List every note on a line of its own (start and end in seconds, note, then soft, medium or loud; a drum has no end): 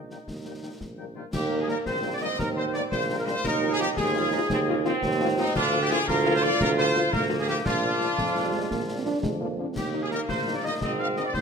0.00 0.19 A#1 soft
0.00 0.81 D#4 soft
0.10 0.17 D#3 soft
0.10 0.17 G3 soft
0.10 0.17 A#3 soft
0.10 0.18 D#4 soft
0.10 0.18 G5 soft
0.10 snare soft
0.28 0.72 D#2 medium
0.28 concert bass drum medium
0.28 snare medium
0.46 0.52 D#3 soft
0.46 0.52 G3 soft
0.46 0.52 A#3 soft
0.46 0.52 D#4 soft
0.46 0.52 G5 soft
0.62 0.70 D#3 soft
0.62 0.70 G3 soft
0.62 0.70 A#3 soft
0.62 0.69 D#4 soft
0.62 0.69 G5 soft
0.81 1.25 A#1 medium
0.81 concert bass drum medium
0.81 snare soft
0.97 1.05 D#3 soft
0.97 1.05 G3 soft
0.97 1.05 A#3 soft
0.97 1.04 D#4 soft
0.97 1.04 G5 soft
1.16 1.22 D#3 soft
1.16 1.22 G3 soft
1.16 1.22 A#3 soft
1.16 1.22 D#4 soft
1.16 1.24 F4 medium
1.16 1.22 G5 soft
1.33 1.77 D#2 loud
1.33 1.83 A#3 medium
1.33 1.58 G4 loud
1.33 1.46 G4 medium
1.33 concert bass drum loud
1.33 snare medium
1.33 crash medium
1.51 1.57 D#3 medium
1.51 1.57 G3 medium
1.51 1.57 A#3 medium
1.59 1.68 G#4 medium
1.59 1.65 G#4 loud
1.68 1.75 D#3 medium
1.68 1.75 G3 medium
1.68 1.75 A#3 medium
1.68 1.76 A#4 medium
1.68 1.77 A#4 loud
1.68 snare soft
1.86 2.30 A#1 medium
1.86 2.88 C4 medium
1.86 2.11 C5 loud
1.86 1.99 C5 medium
1.86 concert bass drum medium
1.86 snare medium
2.03 2.10 D#3 medium
2.03 2.10 G3 medium
2.03 2.10 A#3 medium
2.14 2.17 D5 medium
2.14 2.17 D5 loud
2.21 2.27 D#3 medium
2.21 2.27 G3 medium
2.21 2.27 A#3 medium
2.21 2.29 D#5 medium
2.21 2.38 D#5 loud
2.39 2.83 D#2 medium
2.39 2.47 A#4 loud
2.39 concert bass drum medium
2.39 snare medium
2.56 2.62 D#3 medium
2.56 2.62 G3 medium
2.56 2.62 A#3 medium
2.56 2.65 C5 loud
2.56 2.73 C5 medium
2.74 2.81 D#3 medium
2.74 2.81 G3 medium
2.74 2.81 A#3 medium
2.74 2.82 D5 loud
2.74 snare medium
2.91 3.36 A#1 loud
2.91 3.44 A#3 medium
2.91 3.03 C5 loud
2.91 3.16 C5 loud
2.91 concert bass drum medium
2.91 snare medium
3.09 3.15 D#3 medium
3.09 3.15 G3 medium
3.09 3.15 A#3 medium
3.18 3.22 A#4 medium
3.18 3.26 A#4 medium
3.27 3.33 D#3 medium
3.27 3.33 G3 medium
3.27 3.33 A#3 medium
3.27 3.44 C5 loud
3.27 3.35 C5 loud
3.44 3.88 D#2 loud
3.44 3.94 D#4 loud
3.44 3.69 A#4 loud
3.44 concert bass drum loud
3.44 snare medium
3.44 crash soft
3.62 3.69 F3 medium
3.62 3.68 C4 medium
3.62 3.69 F4 medium
3.70 3.74 G#4 loud
3.70 3.76 G#4 loud
3.79 3.86 F3 medium
3.79 3.86 C4 medium
3.79 3.86 F4 medium
3.79 3.88 G4 loud
3.79 snare medium
3.97 4.41 D#2 loud
3.97 4.14 C4 loud
3.97 5.16 G#4 loud
3.97 concert bass drum medium
3.97 snare medium
4.14 4.22 F3 medium
4.14 4.21 C4 medium
4.14 4.32 F4 loud
4.14 4.21 F4 medium
4.32 4.39 F3 medium
4.32 4.39 C4 medium
4.32 4.40 D#4 medium
4.32 4.39 F4 medium
4.50 4.93 D#2 loud
4.50 4.58 C4 loud
4.50 concert bass drum loud
4.50 snare medium
4.68 4.74 F3 medium
4.68 4.76 A#3 medium
4.68 4.74 C4 medium
4.68 4.74 F4 medium
4.85 4.92 F3 medium
4.85 5.51 C4 loud
4.85 4.92 C4 medium
4.85 4.91 F4 loud
4.85 snare medium
5.03 5.46 D#2 loud
5.03 concert bass drum loud
5.03 snare medium
5.20 5.27 F3 medium
5.20 5.27 C4 medium
5.20 5.27 F4 loud
5.38 5.44 F3 medium
5.38 5.44 C4 medium
5.38 5.54 D#4 loud
5.38 5.46 D#4 loud
5.38 5.44 F4 medium
5.55 5.99 D2 loud
5.55 6.04 D4 loud
5.55 5.80 F4 loud
5.55 5.68 F4 loud
5.55 concert bass drum loud
5.55 snare medium
5.55 crash soft
5.73 5.79 F3 loud
5.73 5.79 A#3 medium
5.73 5.79 F4 medium
5.82 5.90 G4 loud
5.82 5.86 G4 loud
5.90 5.97 F3 loud
5.90 5.97 A#3 loud
5.90 5.97 F4 loud
5.90 6.07 G#4 loud
5.90 5.99 G#4 loud
5.90 snare medium
6.07 6.48 D2 loud
6.07 7.09 F4 loud
6.07 6.20 A#4 loud
6.07 6.33 A#4 loud
6.07 concert bass drum loud
6.07 snare medium
6.26 6.32 F3 loud
6.26 6.32 A#3 loud
6.26 6.32 F4 loud
6.35 6.43 C5 loud
6.35 6.44 C5 loud
6.43 6.50 F3 medium
6.43 6.49 A#3 medium
6.43 6.49 F4 medium
6.43 6.60 D5 loud
6.43 6.59 D5 loud
6.61 7.04 D2 loud
6.61 6.69 A#4 loud
6.61 concert bass drum loud
6.61 snare medium
6.78 6.85 F3 medium
6.78 6.84 A#3 medium
6.78 6.85 F4 medium
6.78 7.10 C5 loud
6.78 7.11 C5 loud
6.96 7.02 F3 medium
6.96 7.02 A#3 loud
6.96 7.02 F4 medium
6.96 snare medium
7.12 7.57 D2 loud
7.12 7.65 A#3 loud
7.12 7.24 A#4 loud
7.12 7.25 A#4 loud
7.12 concert bass drum loud
7.12 snare medium
7.30 7.37 F3 medium
7.30 7.37 A#3 medium
7.30 7.36 F4 medium
7.39 7.48 G#4 medium
7.39 7.44 G#4 loud
7.48 7.55 F3 medium
7.48 7.55 A#3 medium
7.48 7.55 F4 medium
7.48 7.64 G4 loud
7.48 7.56 G4 loud
7.65 8.10 A#1 loud
7.65 9.46 D4 loud
7.65 9.19 F4 loud
7.65 9.20 F4 loud
7.65 concert bass drum loud
7.65 snare medium
7.65 crash soft
7.83 7.89 F3 medium
7.83 7.89 A#3 medium
7.83 7.90 D4 medium
8.01 8.07 F3 medium
8.01 8.07 A#3 medium
8.01 8.07 D4 medium
8.01 snare medium
8.17 8.62 F2 loud
8.17 8.29 F3 medium
8.17 concert bass drum medium
8.17 snare medium
8.36 8.42 F3 medium
8.36 8.42 A#3 medium
8.36 8.42 D4 medium
8.45 8.55 G3 medium
8.54 8.60 F3 medium
8.54 8.70 G#3 medium
8.54 8.60 A#3 medium
8.54 8.60 D4 medium
8.70 9.15 A#1 medium
8.70 8.82 A#3 medium
8.70 concert bass drum medium
8.70 snare medium
8.89 8.95 F3 medium
8.89 8.95 A#3 medium
8.89 8.96 D4 medium
8.97 9.01 C4 medium
9.05 9.13 F3 medium
9.05 9.13 A#3 medium
9.05 9.21 D4 loud
9.05 9.13 D4 medium
9.22 9.67 F2 medium
9.22 9.30 G#3 medium
9.22 concert bass drum loud
9.22 snare medium
9.41 9.48 F3 medium
9.41 9.60 A#3 medium
9.41 9.47 A#3 medium
9.41 9.48 D4 medium
9.58 9.65 F3 medium
9.58 9.65 A#3 medium
9.58 9.76 C4 medium
9.58 9.65 D4 medium
9.75 10.20 D#2 medium
9.75 10.77 A#3 loud
9.75 10.00 G4 medium
9.75 9.89 G4 medium
9.75 concert bass drum medium
9.75 snare medium
9.75 crash medium
9.94 10.00 D#3 medium
9.94 10.00 A#3 medium
9.94 10.00 D#4 medium
10.02 10.06 G#4 medium
10.02 10.07 G#4 loud
10.11 10.18 D#3 medium
10.11 10.18 A#3 medium
10.11 10.18 D#4 medium
10.11 10.19 A#4 loud
10.11 snare medium
10.28 10.73 A#1 medium
10.28 10.53 C5 loud
10.28 10.41 C5 medium
10.28 concert bass drum loud
10.28 snare medium
10.47 10.53 D#3 medium
10.47 10.53 A#3 medium
10.47 10.53 D#4 medium
10.54 10.63 D5 medium
10.54 10.61 D5 medium
10.63 10.71 D#3 medium
10.63 10.71 A#3 medium
10.63 10.71 D#4 medium
10.63 10.80 D#5 loud
10.63 10.73 D#5 loud
10.81 11.25 G#1 loud
10.81 11.30 C4 loud
10.81 10.98 D#5 medium
10.81 10.90 D#5 loud
10.81 concert bass drum loud
10.81 snare medium
10.99 11.06 D#3 medium
10.99 11.06 C4 medium
10.99 11.06 D#4 medium
10.99 11.15 F5 loud
10.99 11.08 F5 loud
11.17 11.23 D#3 medium
11.17 11.23 C4 medium
11.17 11.23 D#4 medium
11.17 11.21 D#5 medium
11.17 11.21 D#5 loud
11.17 snare soft
11.25 11.29 D5 loud
11.25 11.34 D5 loud
11.33 11.41 D#2 medium
11.33 11.41 D#4 loud
11.33 11.41 C5 loud
11.33 concert bass drum medium
11.33 snare medium